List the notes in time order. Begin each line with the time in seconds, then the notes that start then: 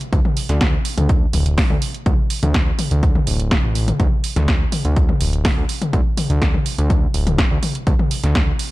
0.01 closed hi-hat
0.13 D2, kick, closed hi-hat
0.25 mid tom
0.37 open hi-hat
0.49 D2, snare, closed hi-hat
0.61 kick, snare, closed hi-hat, mid tom
0.85 open hi-hat
0.98 D2, closed hi-hat, mid tom
1.09 kick, closed hi-hat
1.33 D1, open hi-hat, mid tom
1.46 closed hi-hat
1.58 kick, snare, open hi-hat
1.70 D2, mid tom
1.82 open hi-hat
1.94 closed hi-hat
2.06 D2, kick, closed hi-hat, mid tom
2.30 open hi-hat
2.43 D2, closed hi-hat, mid tom
2.54 kick, snare, closed hi-hat
2.79 open hi-hat, mid tom
2.91 D2, closed hi-hat
3.03 kick, closed hi-hat
3.15 mid tom
3.27 D1, open hi-hat
3.40 closed hi-hat
3.51 kick, snare, closed hi-hat, mid tom
3.64 A1
3.75 open hi-hat
3.88 closed hi-hat, mid tom
4.00 D2, kick, closed hi-hat, mid tom
4.24 open hi-hat
4.36 D2, snare, closed hi-hat, mid tom
4.48 kick, snare, closed hi-hat
4.72 open hi-hat, mid tom
4.85 D2, closed hi-hat
4.96 kick, closed hi-hat
5.09 mid tom
5.21 D1, open hi-hat
5.33 closed hi-hat
5.45 kick, snare, open hi-hat, mid tom
5.58 D2
5.69 open hi-hat
5.82 closed hi-hat, mid tom
5.93 D2, kick, closed hi-hat
6.17 open hi-hat, mid tom
6.30 D2, closed hi-hat
6.42 kick, snare, closed hi-hat
6.54 mid tom
6.66 open hi-hat
6.78 D2, closed hi-hat
6.90 kick, closed hi-hat, mid tom
7.14 D1, open hi-hat
7.27 closed hi-hat, mid tom
7.38 kick, snare, closed hi-hat
7.51 D2
7.63 open hi-hat, mid tom
7.75 closed hi-hat
7.87 D2, kick, closed hi-hat
7.99 mid tom
8.11 open hi-hat
8.24 D2, snare, closed hi-hat
8.35 kick, snare, closed hi-hat, mid tom
8.59 open hi-hat